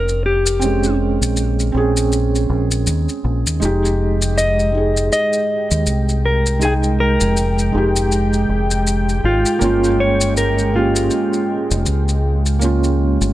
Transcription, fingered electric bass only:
0, 0, Header, 1, 2, 480
1, 0, Start_track
1, 0, Key_signature, -4, "minor"
1, 0, Tempo, 750000
1, 394, Time_signature, 4, 2, 24, 8
1, 8531, End_track
2, 0, Start_track
2, 0, Title_t, "Fingered electric bass"
2, 0, Program_c, 0, 33
2, 0, Note_on_c, 0, 29, 84
2, 750, Note_off_c, 0, 29, 0
2, 777, Note_on_c, 0, 34, 87
2, 1096, Note_off_c, 0, 34, 0
2, 1116, Note_on_c, 0, 34, 83
2, 1577, Note_off_c, 0, 34, 0
2, 1597, Note_on_c, 0, 34, 85
2, 1833, Note_off_c, 0, 34, 0
2, 1837, Note_on_c, 0, 39, 92
2, 1961, Note_off_c, 0, 39, 0
2, 2077, Note_on_c, 0, 34, 100
2, 2201, Note_off_c, 0, 34, 0
2, 2217, Note_on_c, 0, 39, 74
2, 2303, Note_off_c, 0, 39, 0
2, 2318, Note_on_c, 0, 29, 94
2, 3257, Note_off_c, 0, 29, 0
2, 3657, Note_on_c, 0, 39, 99
2, 3743, Note_off_c, 0, 39, 0
2, 3756, Note_on_c, 0, 36, 81
2, 4590, Note_off_c, 0, 36, 0
2, 4617, Note_on_c, 0, 29, 93
2, 4936, Note_off_c, 0, 29, 0
2, 4956, Note_on_c, 0, 29, 86
2, 5417, Note_off_c, 0, 29, 0
2, 5434, Note_on_c, 0, 29, 82
2, 5895, Note_off_c, 0, 29, 0
2, 5913, Note_on_c, 0, 32, 96
2, 6039, Note_off_c, 0, 32, 0
2, 6154, Note_on_c, 0, 31, 97
2, 7095, Note_off_c, 0, 31, 0
2, 7496, Note_on_c, 0, 29, 97
2, 7583, Note_off_c, 0, 29, 0
2, 7593, Note_on_c, 0, 37, 87
2, 8429, Note_off_c, 0, 37, 0
2, 8455, Note_on_c, 0, 31, 90
2, 8531, Note_off_c, 0, 31, 0
2, 8531, End_track
0, 0, End_of_file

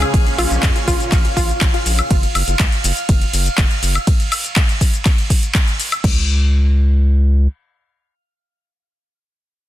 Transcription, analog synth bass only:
0, 0, Header, 1, 2, 480
1, 0, Start_track
1, 0, Tempo, 491803
1, 135, Time_signature, 4, 2, 24, 8
1, 9454, End_track
2, 0, Start_track
2, 0, Title_t, "Analog synth bass"
2, 0, Program_c, 0, 38
2, 135, Note_on_c, 0, 34, 106
2, 284, Note_off_c, 0, 34, 0
2, 374, Note_on_c, 0, 34, 98
2, 450, Note_off_c, 0, 34, 0
2, 497, Note_on_c, 0, 34, 93
2, 569, Note_off_c, 0, 34, 0
2, 614, Note_on_c, 0, 41, 98
2, 690, Note_off_c, 0, 41, 0
2, 855, Note_on_c, 0, 34, 103
2, 930, Note_off_c, 0, 34, 0
2, 1095, Note_on_c, 0, 34, 89
2, 1244, Note_off_c, 0, 34, 0
2, 1334, Note_on_c, 0, 34, 102
2, 1484, Note_off_c, 0, 34, 0
2, 1574, Note_on_c, 0, 34, 103
2, 1650, Note_off_c, 0, 34, 0
2, 1814, Note_on_c, 0, 34, 81
2, 1964, Note_off_c, 0, 34, 0
2, 2055, Note_on_c, 0, 30, 100
2, 2204, Note_off_c, 0, 30, 0
2, 2294, Note_on_c, 0, 30, 96
2, 2370, Note_off_c, 0, 30, 0
2, 2418, Note_on_c, 0, 30, 91
2, 2489, Note_off_c, 0, 30, 0
2, 2535, Note_on_c, 0, 37, 101
2, 2610, Note_off_c, 0, 37, 0
2, 2774, Note_on_c, 0, 30, 103
2, 2850, Note_off_c, 0, 30, 0
2, 3015, Note_on_c, 0, 30, 88
2, 3164, Note_off_c, 0, 30, 0
2, 3254, Note_on_c, 0, 30, 101
2, 3404, Note_off_c, 0, 30, 0
2, 3495, Note_on_c, 0, 30, 105
2, 3570, Note_off_c, 0, 30, 0
2, 3734, Note_on_c, 0, 30, 88
2, 3884, Note_off_c, 0, 30, 0
2, 5895, Note_on_c, 0, 37, 98
2, 7296, Note_off_c, 0, 37, 0
2, 9454, End_track
0, 0, End_of_file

